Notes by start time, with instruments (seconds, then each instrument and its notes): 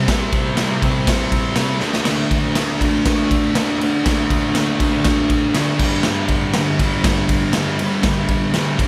0.07 distorted electric guitar C3 G3, kick, snare, ride
0.11 distorted electric guitar C4
0.32 kick, ride
0.56 distorted electric guitar C3 G3, snare, ride
0.60 distorted electric guitar C4
0.82 distorted electric guitar C4, kick, ride
0.87 distorted electric guitar G3
1.07 kick, snare, ride
1.32 kick, ride
1.55 distorted electric guitar C3 G3, snare, ride
1.59 distorted electric guitar C4
1.79 distorted electric guitar A3 D4, snare
1.84 distorted electric guitar D3
1.93 snare
2.05 distorted electric guitar D3 A3, snare, crash
2.09 distorted electric guitar D4
2.31 kick, ride
2.55 distorted electric guitar D3 A3, snare, ride
2.61 distorted electric guitar D4
2.81 distorted electric guitar D4, kick, ride
2.85 distorted electric guitar A3
3.06 kick, snare, ride
3.31 kick, ride
3.55 distorted electric guitar D3 A3, snare, ride
3.59 distorted electric guitar D4
3.79 distorted electric guitar D4, ride
3.84 distorted electric guitar A3
4.05 distorted electric guitar D3 A3, kick, snare, ride
4.09 distorted electric guitar D4
4.30 kick, ride
4.53 distorted electric guitar D3 A3, snare, ride
4.58 distorted electric guitar D4
4.79 distorted electric guitar D4, kick, ride
4.83 distorted electric guitar A3
5.04 kick, snare, ride
5.30 kick, ride
5.54 distorted electric guitar D3 A3, snare, ride
5.58 distorted electric guitar D4
5.79 distorted electric guitar D3 G3, kick, crash
5.83 distorted electric guitar G2
6.03 distorted electric guitar G2 D3, snare
6.08 distorted electric guitar G3
6.28 kick, ride
6.54 distorted electric guitar G2 D3, snare, ride
6.58 distorted electric guitar G3
6.79 distorted electric guitar G3, kick, ride
6.83 distorted electric guitar D3
7.04 kick, snare, ride
7.29 kick, ride
7.53 distorted electric guitar G2 D3, snare, ride
7.58 distorted electric guitar G3
7.78 distorted electric guitar G3, ride
7.82 distorted electric guitar D3
8.03 distorted electric guitar G2 D3, kick, snare, ride
8.07 distorted electric guitar G3
8.29 kick, ride
8.53 distorted electric guitar G2 D3, snare, ride
8.57 distorted electric guitar G3
8.78 distorted electric guitar G3, kick, ride
8.82 distorted electric guitar D3